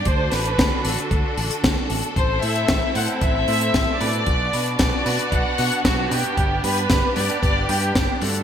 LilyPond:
<<
  \new Staff \with { instrumentName = "Violin section" } { \time 4/4 \key a \dorian \tempo 4 = 114 c''8 b'4 a'4 r4. | c''8 e''4 fis''8 e''4. d''8~ | d''4 d''4 fis''4 fis'8 g'8~ | g'8 b'4 d''8 d''8 g'4 a'8 | }
  \new Staff \with { instrumentName = "String section" } { \time 4/4 \key a \dorian << { a'1~ | a'1 | fis'1 | g'1 | } \\ { <d d' fis'>1 | <c' e'>1 | <b d'>1~ | <b d'>1 | } >> }
  \new Staff \with { instrumentName = "Grand piano" } { \time 4/4 \key a \dorian r1 | r8 <a, c' e' a' c''>4 <a, c' e' a' c''>16 <a, c' e' a' c''>8. <a, c' e' a' c''>4 <b, b d' fis' b'>8~ | <b, b d' fis' b'>8 <b, b d' fis' b'>4 <b, b d' fis' b'>16 <b, b d' fis' b'>8. <b, b d' fis' b'>4 <g, b d' g' b'>8~ | <g, b d' g' b'>8 <g, b d' g' b'>4 <g, b d' g' b'>16 <g, b d' g' b'>8. <g, b d' g' b'>4 <d a d' fis' a'>8 | }
  \new Staff \with { instrumentName = "Fingered electric bass" } { \clef bass \time 4/4 \key a \dorian d,8 a,,8 d,8 a,,8 d,8 a,,8 d,8 a,,8 | a,,8 a,8 a,,8 a,8 a,,8 a,8 a,,8 a,8 | b,,8 b,8 b,,8 b,8 b,,8 b,8 b,,8 b,8 | g,,8 g,8 g,,8 g,8 g,,8 g,8 g,,8 g,8 | }
  \new DrumStaff \with { instrumentName = "Drums" } \drummode { \time 4/4 <hh bd>8 <hho sn>16 hh16 <hh bd sn>8 hho16 hh16 <hh bd>8 hho16 hh16 <hh bd sn>8 hho16 hh16 | <hh bd>8 hho16 hh16 <hh bd sn>8 hho16 hh16 <hh bd>8 hho16 hh16 <hh bd sn>8 hho16 hh16 | <hh bd>8 hho16 hh16 <hh bd sn>8 hho16 hh16 <hh bd>8 hho16 hh16 <hh bd sn>8 hho16 hh16 | <hh bd>8 hho16 hh16 <hh bd sn>8 hho16 hh16 <hh bd>8 hho16 hh16 <hh bd sn>8 hho16 hh16 | }
>>